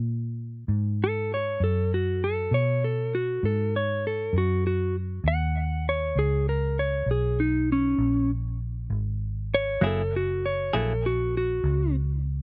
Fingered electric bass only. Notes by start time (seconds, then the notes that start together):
Already playing: A#2
0.68 G#2
1.60 F#2
2.51 B2
3.43 G#2
4.33 F#2
5.24 D#2
6.16 C#2
7.06 B1
7.98 A#1
8.90 G#1
9.81 F#1
10.74 A#1
11.63 C#2